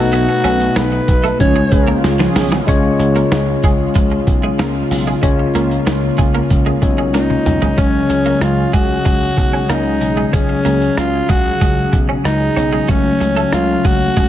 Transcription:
Already playing: B1 B2 A3 B3 D#4 F#4 B4
0.12 B3, closed hi-hat
0.29 muted clean electric guitar stroke
0.44 B1 C#4, closed hi-hat
0.60 closed hi-hat
0.76 B1 B3 B4, snare, closed hi-hat, tambourine
0.92 muted clean electric guitar stroke
1.08 B1, kick, closed hi-hat
1.24 A3, closed hi-hat
1.39 C#2 C#3 F3 G#3 C#4 D#4 F4 G#4 C#5, kick, closed hi-hat
1.47 F4
1.56 G#3
1.72 C#2 F3 C#4 G#4, muted clean electric guitar stroke, kick, closed hi-hat
1.88 A#3
2.04 C#2, snare, closed hi-hat
2.19 F3 C#4 G#4, snare
2.36 B1, muted clean electric guitar stroke, snare, open hi-hat
2.52 G#3, snare
2.66 C#2 C#3 G#3 C#4 F4 C#5, kick, closed hi-hat
2.99 C#2, muted clean electric guitar stroke, closed hi-hat
3.16 A#3, closed hi-hat
3.31 C#2, snare, closed hi-hat
3.63 C#2 G#3, kick, closed hi-hat
3.95 C#2 F3, kick, closed hi-hat
4.12 muted clean electric guitar stroke
4.27 B1, kick, closed hi-hat
4.43 G#3
4.59 C#2 A#3, snare, closed hi-hat
4.91 B1, muted clean electric guitar stroke, open hi-hat
5.07 G#3
5.22 C#2 C#3 G#3 A#3 C#4 F4 C#5, kick, closed hi-hat
5.39 muted clean electric guitar stroke
5.55 C#2 A#3, closed hi-hat
5.71 closed hi-hat
5.87 C#2, muted clean electric guitar stroke, snare, closed hi-hat
6.18 C#2 G#3, kick, closed hi-hat
6.35 A#3
6.50 C#2, kick, closed hi-hat
6.66 G#3
6.82 B1 G#3 C#4 F4 C#5, muted clean electric guitar stroke, kick, closed hi-hat
6.98 G#3
7.14 C#2 A#3 D#4, snare, closed hi-hat
7.30 muted clean electric guitar stroke, high tom
7.46 B1, closed hi-hat, mid tom
7.62 G#3, floor tom
7.77 C#2 C#3 F#3 G#3 C#4 G#4 C#5, kick, closed hi-hat
8.09 C#2, muted clean electric guitar stroke, closed hi-hat
8.26 A#3, closed hi-hat
8.41 C#2 F4, cross-stick, closed hi-hat
8.73 C#2 G#3 F#4, kick, closed hi-hat
9.05 C#2 G#3, kick, closed hi-hat
9.37 B1, muted clean electric guitar stroke, kick, closed hi-hat
9.53 C#4
9.69 C#2 A#3 D#4, cross-stick, closed hi-hat
10.01 B1, muted clean electric guitar stroke, closed hi-hat
10.17 G#3
10.27 D#4
10.32 C#2 C#3 F#3 G#3 C#4 G#4, kick, closed hi-hat
10.49 muted clean electric guitar stroke
10.65 C#2 A#3, closed hi-hat
10.82 closed hi-hat
10.97 C#2 F4, cross-stick, closed hi-hat
11.29 C#2 G#3 F#4, kick, closed hi-hat
11.61 C#2 G#3, kick, closed hi-hat
11.93 B1, muted clean electric guitar stroke, kick, closed hi-hat
12.09 C#4
12.25 C#2 D#4, muted clean electric guitar stroke, cross-stick, closed hi-hat
12.56 B1 C#4, closed hi-hat
12.73 G#3
12.88 C#2 C#3 F#3 A3 C#4 C#5, kick, closed hi-hat
13.20 C#2, muted clean electric guitar stroke, closed hi-hat
13.36 A3, closed hi-hat
13.53 C#2 F4, cross-stick, closed hi-hat
13.85 C#2 G#3 F#4, kick, closed hi-hat
14.17 C#2 G#3, kick, closed hi-hat

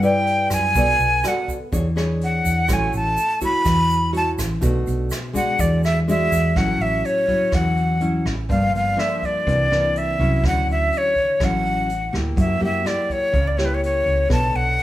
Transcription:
Already playing: G2 G3
0.02 E4 B4 D5 G5, closed hi-hat, shaker
0.26 closed hi-hat
0.50 F#2 G#5, kick, cross-stick, closed hi-hat, shaker
0.75 B1 B3 F#4 A4 D5, kick, closed hi-hat, shaker
0.99 B1, closed hi-hat, shaker
1.24 F#4 A4 D5, cross-stick, closed hi-hat, shaker
1.28 F#5
1.48 kick, closed hi-hat, shaker
1.72 E2 E3 D4 G#4 C#5, kick, closed hi-hat, shaker
1.96 D4 G#4 C#5, cross-stick, closed hi-hat, shaker
2.21 F#5, closed hi-hat
2.45 E2, kick, closed hi-hat, shaker
2.68 A1 A3 E4 F#4 C#5, kick, cross-stick, closed hi-hat, shaker
2.73 G#5
2.93 A1 A5, closed hi-hat, shaker
3.17 closed hi-hat, shaker
3.41 E4 F#4 C#5 B5, kick, closed hi-hat, shaker
3.64 E2 E3, kick, cross-stick, closed hi-hat, shaker
3.90 closed hi-hat, shaker
4.13 E4 F#4 C#5, closed hi-hat
4.17 A5
4.38 A1, kick, cross-stick, closed hi-hat, shaker
4.61 B1 B2 A3 D4 F#4, kick, closed hi-hat, shaker
4.87 B1, closed hi-hat, shaker
5.10 cross-stick, closed hi-hat, shaker
5.33 G#3 D4 F#4 F#5, kick, closed hi-hat, shaker
5.59 E2 E3 D5, kick, closed hi-hat, shaker
5.83 E5, cross-stick, closed hi-hat, shaker
6.08 G#3 D4 F#4 E5, closed hi-hat, shaker
6.32 E2, kick, closed hi-hat, shaker
6.56 A1 A2 F#3 C#4 E4 F#5, kick, cross-stick, closed hi-hat
6.79 A1 E5, closed hi-hat
7.05 C#5, closed hi-hat
7.28 F#3 C#4 E4, kick, closed hi-hat
7.52 E2 E3 F#5, kick, cross-stick, closed hi-hat
7.77 closed hi-hat
8.01 F#3 C#4 E4, closed hi-hat
8.26 A1, kick, cross-stick, closed hi-hat
8.49 G1 G2 F3 A#3 D4 F5, kick, closed hi-hat
8.74 G1 F5, closed hi-hat
8.97 F3 A#3 D4 E5, cross-stick, closed hi-hat
9.23 D5, kick, closed hi-hat
9.47 C2 C3 E3 A#3 D4, kick, closed hi-hat
9.71 E3 A#3 D4, cross-stick, closed hi-hat
9.96 E5, closed hi-hat
10.19 C2 F#3 C#4 E4, kick, closed hi-hat
10.44 D2 D3 F#5, kick, cross-stick, closed hi-hat
10.67 D2, closed hi-hat
10.71 E5
10.92 closed hi-hat
10.98 C#5
11.16 kick, closed hi-hat
11.40 A1 A2 F#3 C#4 E4, kick, cross-stick, closed hi-hat
11.44 F#5
11.64 closed hi-hat
11.89 closed hi-hat
12.13 D2 A#3 E4 G4, kick, cross-stick, closed hi-hat
12.36 F#2 F#3 E5, kick, closed hi-hat
12.60 F#2 A#3 E4 G4, closed hi-hat
12.65 E5
12.84 A#3 E4 G4 D5, cross-stick, closed hi-hat
13.10 C#5, kick, closed hi-hat
13.32 C#2 C#3, kick, closed hi-hat
13.48 D5
13.57 A#3 E4 G4 C#5, cross-stick, closed hi-hat
13.65 B4
13.74 C#5
13.83 C#5, closed hi-hat
14.06 C#2, kick, closed hi-hat
14.29 B1 B3 D4 A4 C#5 A5, kick, cross-stick, closed hi-hat
14.55 B1 F#5, closed hi-hat
14.79 closed hi-hat

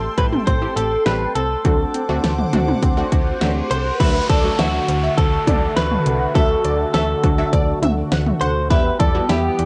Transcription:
Already playing: A4 G5 C6
0.18 A1 A3 C4 E4 G4 B4, kick, closed hi-hat
0.33 mid tom
0.47 A1 C4 C5, kick, closed hi-hat
0.62 A3 C4 E4 G4
0.76 A1 G4 A4, closed hi-hat
1.06 A1 G3 A3 C4 E4 G4 B4, snare, closed hi-hat
1.35 C2 C4 A4, closed hi-hat
1.65 D2 F#3 A3 C4 D4 F#4 C5 F#5 D6, kick, closed hi-hat, riser
1.94 C4, closed hi-hat
2.09 D2 A3 C4 D4 F#4
2.24 D2 A3, snare, closed hi-hat
2.38 mid tom
2.53 D2 A3 C4 D4 F#4, closed hi-hat, mid tom
2.68 mid tom
2.82 D2 C4, kick, closed hi-hat
2.97 A3 C4 D4 F#4
3.12 D2 F#4, kick, closed hi-hat
3.41 D2 F#3 A3 C4 D4 F#4, snare, closed hi-hat
3.71 C2 C4 C5, closed hi-hat
4.00 D2 D3 F#3 A3 D4 F#4 B4 E5, kick, closed hi-hat, crash, downlifter
4.29 D2 A4 D5, kick, closed hi-hat
4.44 F#3 A3 D4 F#4
4.59 D2 F#3 A3 D4 E4 F#4 E5, snare, closed hi-hat
4.88 D2, closed hi-hat
5.03 E5
5.17 D2 A4, kick, closed hi-hat
5.47 D2 D5, kick, closed hi-hat, mid tom
5.76 D2 B4, snare, closed hi-hat
5.91 mid tom
6.06 C2, closed hi-hat
6.35 D2 F#3 A3 D4 F#4 A4 E5, kick, closed hi-hat
6.65 D2 D5, closed hi-hat
6.94 D2 A4 E5, snare, closed hi-hat
7.24 D2 F#3 A3 D4 F#4, kick, closed hi-hat
7.38 F#3 A3 D4 F#4 E5
7.53 D2 D5, kick, closed hi-hat
7.82 D2 E5, closed hi-hat, mid tom
8.12 D2 F#5, snare, closed hi-hat
8.27 mid tom
8.41 D2 C5 F#5, closed hi-hat
8.70 E2 E3 G3 B3 E4 G4 B4 E5, kick, closed hi-hat
9.00 E2 A4 D5, kick, closed hi-hat
9.15 G3 B3 E4 F#4
9.29 E2 G3 B3 E4 G4 E5, snare, closed hi-hat
9.59 E2, closed hi-hat

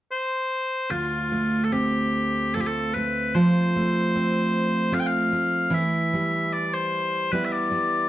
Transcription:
0.11 C5
0.90 D2 F4
1.32 A3
1.64 A4
1.72 C4 G4
2.54 A3 C4 F4 A4
2.61 G4
2.67 A4
2.94 A3 B4
3.35 F3 F4 C5
3.76 A3
4.16 C4
4.92 A3 C4 F4 F5
5.00 G5
5.07 F5
5.33 A3
5.70 E3 E4 E5
6.13 G3
6.53 D5
6.73 C5
7.32 G3 B3 E4 B4
7.45 E5
7.52 D5
7.71 G3

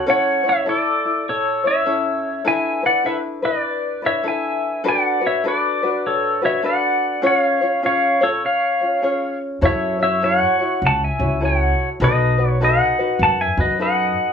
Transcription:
Already playing: F#5
0.06 C#4 E4 A4 C#5 F#5
0.11 C#5
0.44 C#4 E4 C#5
0.49 C#5 E5
0.65 E4 A4 D5
0.71 A4
1.05 E4
1.29 A4 C#5
1.64 C#4 E4 C#5 E5
1.86 C#4 E4 A4 C#5
2.45 D4 E4 A4 B4 E5 G#5
2.83 D4 E4 B4 D5 F#5
3.04 D4 E4 A4 B4 E5
3.42 D4 E4 B4 D5
4.02 D4 E4 B4
4.06 C#5 E5
4.23 D4 E4 A4 B4
4.28 E5 G#5
4.84 D4 F#4 A4 B4
4.88 D5 F#5
5.21 D4 F#4 B4
5.26 C#5 E5
5.44 D4 F#4 A4 B4
5.48 B4 D5
5.83 D4 F#4 B4
6.07 A4 C#5
6.42 D4 F#4 B4 C#5 E5
6.62 D4 F#4 A4 B4 D5 F#5
7.22 C#4 F4 G#4 C#5
7.26 C#5 F5
7.61 C#4 F4 C#5
7.82 C#4 F4 G#4 C#5 F5
8.21 C#4 F4 A4 C#5
8.45 C#5 F5
8.81 C#4 F4 C#5
9.02 C#4 F4 G#4 C#5
9.61 F#2 E4 F#4 A4 C#5
9.65 C#5 E5
9.99 E4 F#4 C#5 E5
10.04 C#5
10.22 E4 F#4 A4 C#5 F#5
10.26 C#5
10.59 E4 F#4 C#5
10.82 C#2
10.86 F#5 A5
11.04 E5 G#5
11.19 C#2 E4 F#4 C#5
11.40 E4 F#4 A4 C#5
11.45 C#5 F#5
12.00 B1 D#4 F#4 A4 B4
12.04 B4 D#5
12.38 D#4 F#4 B4
12.50 C#5
12.61 D#4 F#4 A4 B4 D#5 F#5
12.99 D#4 F#4 B4
13.19 F#2 A5
13.24 F#5
13.41 E5 G#5
13.57 F#2 D#4 F#4 B4 D#5
13.79 D#4 F#4 A4 B4 D#5 F#5

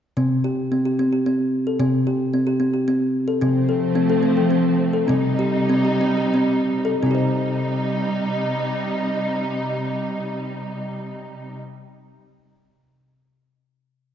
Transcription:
0.17 C3 C4
0.44 G4
0.72 C4
0.85 G4
0.99 C4
1.13 G4
1.26 C4
1.67 A4
1.80 C3 C4
2.07 G4
2.34 C4
2.47 G4
2.60 C4
2.74 G4
2.88 C4
3.28 A4
3.41 C3 F3 A3 C4
3.69 A4
3.95 C4
4.10 A4
4.23 C4
4.37 A4
4.51 C4
4.93 A4
5.08 C3 G3 C4 D#4
5.39 G4
5.70 C4
5.85 G4
6.01 C4
6.17 G4
6.34 C4
6.85 A4
7.01 C3 G3 C4 D#4
7.06 D#4
7.11 G4 C5

